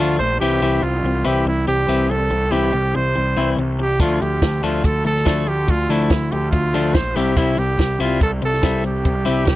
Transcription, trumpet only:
0.00 0.18 F4 medium
0.19 0.39 C5 medium
0.40 0.84 G4 medium
0.83 1.27 F4 medium
1.26 1.47 G4 medium
1.47 1.67 E4 medium
1.68 2.12 G4 medium
2.10 2.53 A4 medium
2.51 2.97 G4 medium
2.95 3.52 C5 medium
3.81 4.00 G4 medium
4.01 4.23 F4 medium
4.21 4.66 G4 medium
4.64 4.87 F4 medium
4.85 5.06 A4 medium
5.06 5.50 A4 medium
5.49 5.72 G4 medium
5.70 5.92 F4 medium
5.91 6.33 E4 medium
6.31 6.51 G4 medium
6.51 6.96 F4 medium
6.94 7.18 C5 medium
7.16 7.39 G4 medium
7.37 7.60 E4 medium
7.59 8.00 G4 medium
8.01 8.20 F4 medium
8.23 8.32 A4 medium
8.45 8.83 A4 medium
8.86 9.56 G4 medium

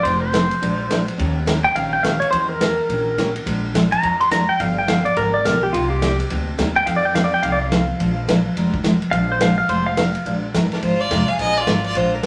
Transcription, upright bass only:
0.05 0.50 F1 medium
0.62 1.07 A#1 medium
1.19 1.64 D#2 loud
1.76 2.21 A#1 medium
2.33 2.78 E2 medium
2.89 3.35 A#1 medium
3.46 3.92 A#1 loud
4.03 4.48 F2 medium
4.60 5.05 G1 loud
5.17 5.41 G#1 medium
5.45 5.69 B1 medium
5.74 6.19 C2 medium
6.31 6.54 D2 medium
6.59 6.82 D#2 medium
6.87 7.32 F2 medium
7.43 7.88 C2 medium
8.00 8.45 A#1 loud
8.56 9.01 F1 medium
9.13 9.58 A#1 loud
9.69 10.14 F1 medium
10.26 10.53 A#1 medium
10.54 10.70 G1 medium
10.71 muted upright bass stroke soft
10.83 11.10 G#1 medium
11.11 11.27 F1 loud
11.28 muted upright bass stroke soft
11.39 11.66 A#1 medium
11.67 11.94 G#1 medium
11.95 12.23 A#1 medium

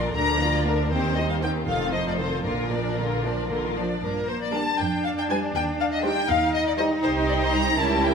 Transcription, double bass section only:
0.00 0.14 A#1 medium
0.14 0.89 D2 soft
0.91 1.67 D#2 soft
1.67 2.45 F1 soft
2.45 3.82 A#1 soft
4.02 4.63 G2 medium
4.78 5.39 F2 medium
5.54 6.13 D#2 medium
6.28 6.87 D#2 medium
7.03 7.75 C2 medium
7.79 8.14 C#2 medium

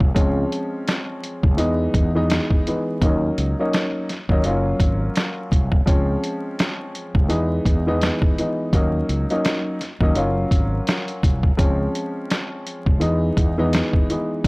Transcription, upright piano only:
0.14 1.58 F3 medium
0.14 1.56 G#3 medium
0.14 1.59 C4 medium
0.14 1.59 C#4 loud
1.57 2.09 E3 medium
1.57 2.09 G#3 medium
1.57 2.09 B3 medium
1.57 2.10 D#4 loud
2.15 2.62 E3 medium
2.15 2.63 G#3 medium
2.15 2.63 B3 medium
2.15 2.63 D#4 loud
2.67 3.00 E3 medium
2.67 3.00 G#3 medium
2.67 3.00 B3 medium
2.67 3.00 D#4 medium
3.03 3.53 F#3 medium
3.03 3.53 A#3 medium
3.03 3.54 C#4 medium
3.03 3.54 D#4 medium
3.59 4.06 F#3 medium
3.59 4.06 A#3 medium
3.59 4.06 C#4 medium
3.59 4.07 D#4 loud
4.30 4.43 F#3 loud
4.30 4.44 A#3 medium
4.30 4.44 C#4 medium
4.30 4.48 D#4 loud
4.45 5.77 F#3 medium
4.45 5.78 A#3 medium
4.45 5.78 C#4 medium
4.45 5.78 F4 loud
5.86 7.29 F3 medium
5.86 7.28 G#3 medium
5.86 7.30 C4 medium
5.86 7.30 C#4 loud
7.29 7.80 E3 medium
7.29 7.81 G#3 medium
7.29 7.81 B3 medium
7.29 7.81 D#4 loud
7.87 8.34 E3 medium
7.87 8.34 G#3 medium
7.87 8.34 B3 medium
7.87 8.35 D#4 loud
8.39 8.71 E3 medium
8.39 8.72 G#3 medium
8.39 8.72 B3 medium
8.39 8.72 D#4 medium
8.74 9.25 F#3 medium
8.74 9.25 A#3 medium
8.74 9.25 C#4 medium
8.74 9.25 D#4 medium
9.30 9.77 F#3 medium
9.30 9.77 A#3 medium
9.30 9.78 C#4 medium
9.30 9.78 D#4 loud
10.01 10.14 F#3 loud
10.01 10.15 A#3 medium
10.01 10.15 C#4 medium
10.01 10.20 D#4 loud
10.16 11.49 F#3 medium
10.16 11.49 A#3 medium
10.16 11.49 C#4 medium
10.16 11.49 F4 loud
11.57 13.01 F3 medium
11.57 12.99 G#3 medium
11.57 13.01 C4 medium
11.57 13.02 C#4 loud
13.00 13.52 E3 medium
13.00 13.52 G#3 medium
13.00 13.52 B3 medium
13.00 13.52 D#4 loud
13.58 14.05 E3 loud
13.58 14.06 G#3 medium
13.58 14.06 B3 medium
13.58 14.06 D#4 loud
14.10 14.43 E3 medium
14.10 14.43 G#3 medium
14.10 14.43 B3 medium
14.10 14.43 D#4 medium

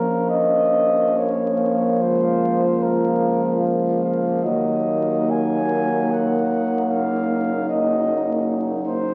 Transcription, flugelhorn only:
0.00 0.31 A#4 medium
0.29 1.19 D#5 medium
1.17 2.03 C#5 medium
2.01 2.84 C5 medium
2.83 3.64 A#4 medium
4.03 4.45 F5 medium
4.44 5.32 D#5 medium
5.31 6.13 G#5 medium
6.11 6.88 F#5 medium
6.89 7.68 F5 medium
7.69 8.48 D#5 medium
8.87 9.14 C5 medium

